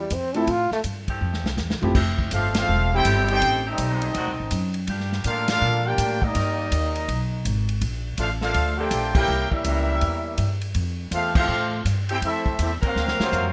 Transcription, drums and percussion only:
0.10 kick, hi-hat pedal, ride
0.34 ride
0.47 kick, ride
0.71 snare
0.84 kick, hi-hat pedal, ride
1.08 kick, ride
1.34 snare
1.46 snare
1.57 snare, hi-hat pedal
1.70 snare
1.83 floor tom
1.95 kick, snare, crash
2.19 kick
2.31 kick, hi-hat pedal, ride
2.54 snare, ride
3.05 kick, hi-hat pedal, ride
3.28 ride
3.42 kick, ride
3.78 kick, hi-hat pedal, ride
4.02 ride
4.14 kick, ride
4.51 kick, hi-hat pedal, ride
4.74 ride
4.87 kick, ride
5.00 snare
5.12 snare
5.24 kick, hi-hat pedal, ride
5.48 snare, ride
5.98 kick, hi-hat pedal, ride
6.22 kick
6.35 kick, ride
6.72 kick, hi-hat pedal, ride
6.95 ride
7.08 kick, ride
7.45 kick, hi-hat pedal, ride
7.69 ride
7.81 kick, ride
8.17 kick, hi-hat pedal, ride
8.41 snare
8.54 kick, ride
8.91 kick, hi-hat pedal, ride
9.15 kick, crash
9.52 kick
9.64 kick, hi-hat pedal, ride
10.01 kick, ride
10.38 kick, hi-hat pedal, ride
10.61 ride
10.74 kick, ride
11.12 kick, hi-hat pedal, ride
11.35 kick, crash
11.85 kick, hi-hat pedal, ride
12.09 ride
12.22 kick, ride
12.46 kick
12.59 kick, hi-hat pedal, ride
12.83 kick, ride
12.96 snare
13.08 snare
13.20 snare
13.32 floor tom, hi-hat pedal

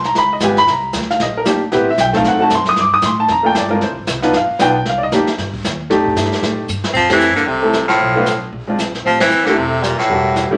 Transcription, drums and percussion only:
0.04 snare
0.15 brush sweep, snare
0.40 snare, hi-hat pedal
0.57 snare
0.67 brush sweep, snare
0.93 snare, hi-hat pedal
1.02 snare
1.11 snare
1.20 brush sweep, snare
1.45 snare, hi-hat pedal
1.72 brush sweep, snare
1.98 snare, hi-hat pedal
2.13 kick, snare
2.24 brush sweep, snare
2.50 snare, hi-hat pedal
2.65 snare
2.76 brush sweep, snare
3.02 snare, hi-hat pedal
3.28 brush sweep, snare
3.55 snare, hi-hat pedal
3.81 brush sweep, snare
4.07 snare, hi-hat pedal
4.22 snare
4.33 brush sweep, snare
4.59 snare, hi-hat pedal
4.85 brush sweep, snare
5.12 snare, hi-hat pedal
5.27 snare
5.38 brush sweep, snare
5.54 kick
5.64 snare, hi-hat pedal
5.90 brush sweep, snare
6.06 kick
6.16 snare, hi-hat pedal
6.25 snare
6.32 snare
6.34 snare
6.43 brush sweep, snare
6.68 hi-hat pedal
6.84 snare
6.94 brush sweep, kick, crash
7.09 snare, ride
7.20 hi-hat pedal
7.36 snare
7.47 brush sweep
7.73 snare, hi-hat pedal
7.89 snare
8.00 brush sweep
8.26 snare, hi-hat pedal
8.53 brush sweep
8.79 snare, hi-hat pedal
8.94 snare
9.05 brush sweep
9.20 snare, ride
9.31 hi-hat pedal
9.46 snare
9.57 brush sweep
9.83 snare, hi-hat pedal
9.99 snare
10.10 brush sweep
10.36 snare, hi-hat pedal

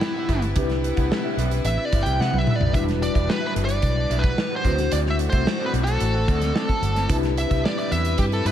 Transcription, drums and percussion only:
0.01 snare
0.29 kick, snare, closed hi-hat
0.42 closed hi-hat
0.56 kick, closed hi-hat
0.69 snare, closed hi-hat
0.84 closed hi-hat
0.97 kick, closed hi-hat
1.12 snare
1.39 closed hi-hat
1.51 closed hi-hat
1.65 closed hi-hat
1.92 kick, closed hi-hat
2.06 closed hi-hat
2.21 snare
2.34 high tom
2.47 mid tom
2.61 floor tom
2.74 kick, closed hi-hat
2.88 snare, closed hi-hat
3.03 closed hi-hat
3.15 kick, closed hi-hat
3.30 snare
3.56 closed hi-hat
3.69 closed hi-hat
3.82 kick, closed hi-hat
4.11 closed hi-hat
4.24 kick, snare, closed hi-hat
4.38 snare
4.65 kick, snare, closed hi-hat
4.78 snare, closed hi-hat
4.92 closed hi-hat
5.06 snare
5.19 closed hi-hat
5.32 kick, closed hi-hat
5.47 snare
5.74 closed hi-hat
5.87 closed hi-hat
6.00 closed hi-hat
6.28 kick, closed hi-hat
6.41 snare, closed hi-hat
6.56 snare
6.69 kick, closed hi-hat
6.83 closed hi-hat
6.96 snare, closed hi-hat
7.09 kick, closed hi-hat
7.23 snare, closed hi-hat
7.37 closed hi-hat
7.51 kick, closed hi-hat
7.66 snare
7.79 closed hi-hat
7.92 closed hi-hat
8.05 closed hi-hat
8.18 kick, closed hi-hat
8.32 closed hi-hat
8.46 closed hi-hat

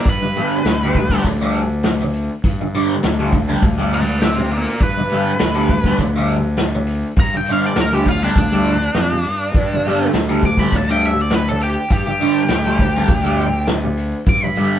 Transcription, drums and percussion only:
0.05 kick, open hi-hat
0.35 open hi-hat
0.65 snare, open hi-hat
0.95 kick, open hi-hat
1.10 kick
1.24 kick, open hi-hat
1.53 open hi-hat
1.83 snare, open hi-hat
2.13 open hi-hat
2.44 kick, open hi-hat
2.75 open hi-hat
3.03 snare, open hi-hat
3.33 kick, open hi-hat
3.62 kick, open hi-hat
3.92 open hi-hat
4.21 snare, open hi-hat
4.51 open hi-hat
4.81 kick, open hi-hat
5.09 open hi-hat
5.39 snare, open hi-hat
5.69 kick, open hi-hat
5.84 kick
5.99 kick, open hi-hat
6.27 open hi-hat
6.57 snare, open hi-hat
6.87 open hi-hat
7.16 kick, open hi-hat
7.46 open hi-hat
7.75 snare, open hi-hat
8.05 kick, open hi-hat
8.35 kick, open hi-hat
8.65 open hi-hat
8.94 snare, open hi-hat
9.24 open hi-hat
9.54 kick, open hi-hat
9.83 open hi-hat
10.13 snare, open hi-hat
10.42 kick, open hi-hat
10.57 kick
10.72 kick, open hi-hat
11.00 open hi-hat
11.30 snare, open hi-hat
11.60 open hi-hat
11.90 kick, open hi-hat
12.20 open hi-hat
12.48 snare, open hi-hat
12.78 kick, open hi-hat
13.08 kick, open hi-hat
13.38 open hi-hat
13.67 snare, open hi-hat
13.97 open hi-hat
14.26 kick, open hi-hat
14.56 open hi-hat

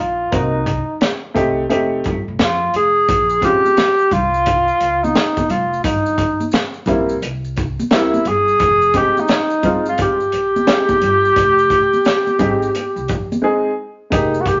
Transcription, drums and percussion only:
0.32 kick, closed hi-hat
0.66 kick, closed hi-hat
1.01 snare, closed hi-hat
1.36 kick, closed hi-hat
1.70 closed hi-hat
2.04 kick, closed hi-hat
2.39 snare, closed hi-hat
2.74 closed hi-hat
3.09 kick, closed hi-hat, maracas
3.30 maracas
3.42 kick, closed hi-hat, maracas
3.66 high conga, maracas
3.77 snare, closed hi-hat, maracas
3.99 maracas
4.11 kick, closed hi-hat, low conga, maracas
4.34 maracas
4.46 kick, closed hi-hat, maracas
4.68 maracas
4.80 closed hi-hat, maracas
5.04 high conga, maracas
5.15 snare, closed hi-hat, maracas
5.37 kick, closed hi-hat, high conga, maracas
5.50 closed hi-hat, low conga, maracas
5.73 maracas
5.84 kick, closed hi-hat, maracas
6.06 maracas
6.18 kick, closed hi-hat, maracas
6.40 high conga, maracas
6.52 snare, closed hi-hat, maracas
6.74 maracas
6.86 kick, closed hi-hat, low conga, maracas
7.09 maracas
7.22 closed hi-hat, maracas
7.44 maracas
7.56 kick, closed hi-hat, maracas
7.80 high conga, maracas
7.91 snare, closed hi-hat, maracas
8.14 high conga, maracas
8.25 closed hi-hat, low conga, maracas
8.48 maracas
8.60 kick, closed hi-hat, maracas
8.82 maracas
8.94 kick, closed hi-hat, maracas
9.17 high conga, maracas
9.28 snare, closed hi-hat, maracas
9.50 maracas
9.63 kick, closed hi-hat, low conga, maracas
9.86 maracas
9.98 kick, closed hi-hat, maracas
10.20 maracas
10.32 closed hi-hat, maracas
10.56 high conga, maracas
10.67 snare, closed hi-hat, maracas
10.89 kick, high conga, maracas
11.01 closed hi-hat, low conga, maracas
11.25 maracas
11.36 kick, closed hi-hat, maracas
11.58 maracas
11.70 kick, closed hi-hat, maracas
11.93 high conga, maracas
12.05 snare, closed hi-hat, maracas
12.27 high conga, maracas
12.39 kick, closed hi-hat, low conga, maracas
12.62 maracas
12.75 closed hi-hat, high conga, maracas
12.97 maracas
13.08 kick, closed hi-hat, maracas
13.32 high conga, maracas
14.12 kick, closed hi-hat, maracas
14.34 maracas
14.46 kick, closed hi-hat, maracas

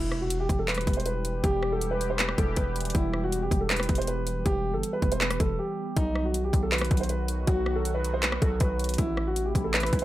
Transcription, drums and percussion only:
0.12 cross-stick
0.30 closed hi-hat
0.49 kick, closed hi-hat
0.68 clap, closed hi-hat
0.74 cross-stick, closed hi-hat
0.81 closed hi-hat
0.87 kick, closed hi-hat
0.93 closed hi-hat
1.00 closed hi-hat
1.06 closed hi-hat
1.25 closed hi-hat
1.44 kick, closed hi-hat
1.63 cross-stick
1.81 closed hi-hat
2.01 closed hi-hat
2.19 clap, closed hi-hat
2.29 cross-stick
2.38 kick, closed hi-hat
2.56 kick, closed hi-hat
2.76 closed hi-hat
2.80 closed hi-hat
2.85 closed hi-hat
2.90 closed hi-hat
2.95 kick, closed hi-hat
3.13 cross-stick
3.32 closed hi-hat
3.51 kick, closed hi-hat
3.70 clap, closed hi-hat
3.76 cross-stick, closed hi-hat
3.83 closed hi-hat
3.89 kick, closed hi-hat
3.95 closed hi-hat
4.02 closed hi-hat
4.07 closed hi-hat
4.27 closed hi-hat
4.46 kick, closed hi-hat
4.83 closed hi-hat
5.02 kick, closed hi-hat
5.12 closed hi-hat
5.21 clap, closed hi-hat
5.31 cross-stick, closed hi-hat
5.40 kick, closed hi-hat
5.97 kick, closed hi-hat
6.15 cross-stick
6.34 closed hi-hat
6.53 kick, closed hi-hat
6.72 clap, closed hi-hat
6.78 cross-stick, closed hi-hat
6.85 closed hi-hat
6.91 kick, closed hi-hat
6.97 closed hi-hat
7.03 closed hi-hat
7.09 closed hi-hat
7.28 closed hi-hat
7.47 kick, closed hi-hat
7.66 cross-stick
7.85 closed hi-hat
8.04 closed hi-hat
8.23 clap, closed hi-hat
8.32 cross-stick
8.42 kick, closed hi-hat
8.60 kick, closed hi-hat
8.79 closed hi-hat
8.84 closed hi-hat
8.89 closed hi-hat
8.94 closed hi-hat
8.98 kick, closed hi-hat
9.17 cross-stick
9.36 closed hi-hat
9.55 kick, closed hi-hat
9.74 clap, closed hi-hat
9.80 cross-stick, closed hi-hat
9.86 closed hi-hat
9.93 kick, closed hi-hat
9.99 closed hi-hat

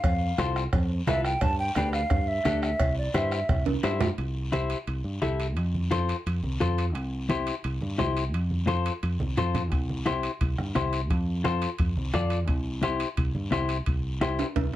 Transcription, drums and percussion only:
0.04 bombo low, bombo rim, cowbell, long guiro
0.38 bombo rim, cowbell, high conga, short guiro
0.56 bombo rim, short guiro
0.73 bombo low, bombo rim, cowbell, high conga, low conga, long guiro
1.07 bombo rim, cowbell, high conga, low timbale, short guiro
1.25 bombo rim, short guiro
1.41 bombo low, bombo rim, cowbell, high conga, low conga, long guiro
1.75 bombo rim, cowbell, high conga, short guiro
1.93 bombo rim, short guiro
2.10 bombo low, bombo rim, cowbell, high conga, low conga, long guiro
2.45 bombo rim, cowbell, high conga, short guiro
2.62 bombo rim, short guiro
2.80 bombo low, bombo rim, cowbell, high conga, long guiro
3.14 bombo rim, cowbell, high conga, short guiro
3.31 bombo rim, short guiro
3.49 bombo low, bombo rim, cowbell, high conga, low conga, long guiro
3.66 high conga, high timbale
3.83 bombo rim, cowbell, low timbale, short guiro
4.01 bombo rim, low conga, low timbale, short guiro
4.18 high conga, high timbale, long guiro
4.52 high conga, high timbale, short guiro
4.70 high timbale, short guiro
4.87 high conga, high timbale, long guiro
5.22 high conga, high timbale, short guiro
5.40 high timbale, short guiro
5.56 high conga, high timbale, long guiro
5.74 high conga
5.91 high conga, high timbale, short guiro
6.09 high timbale, short guiro
6.26 high conga, high timbale, long guiro
6.43 high conga
6.60 high conga, high timbale, short guiro
6.78 high timbale, short guiro
6.95 high conga, high timbale, long guiro
7.29 high conga, high timbale, short guiro
7.47 high timbale, short guiro
7.64 high conga, high timbale, long guiro
7.81 high conga
7.99 high conga, high timbale, low timbale, short guiro
8.17 high timbale, short guiro
8.34 high conga, high timbale, long guiro
8.51 high conga
8.67 high conga, high timbale, short guiro
8.86 high timbale, short guiro
9.03 high conga, high timbale, long guiro
9.20 high conga
9.37 low conga, high timbale, short guiro
9.54 low conga, high timbale, short guiro
9.72 bombo low, high conga, high timbale, long guiro
9.89 high conga
10.06 bombo rim, high conga, high timbale, short guiro
10.23 high timbale, short guiro
10.41 bombo low, high conga, high timbale, long guiro
10.58 bombo rim, high conga
10.75 bombo rim, high conga, high timbale, short guiro
10.93 high timbale, short guiro
11.10 bombo low, high conga, high timbale, long guiro
11.45 bombo rim, high conga, high timbale, short guiro
11.62 high timbale, short guiro
11.79 bombo low, high conga, high timbale, long guiro
11.97 high conga
12.14 bombo rim, high conga, high timbale, short guiro
12.30 high timbale, short guiro
12.48 bombo low, high conga, high timbale, long guiro
12.83 bombo rim, high conga, high timbale, short guiro
13.00 high timbale, short guiro
13.17 bombo low, high conga, high timbale, long guiro
13.35 high conga
13.52 bombo rim, high conga, high timbale, short guiro
13.69 high timbale, short guiro
13.86 bombo low, high conga, high timbale, long guiro
14.21 bombo rim, high conga, high timbale, short guiro
14.39 high timbale, short guiro
14.56 bombo low, high conga, high timbale, long guiro

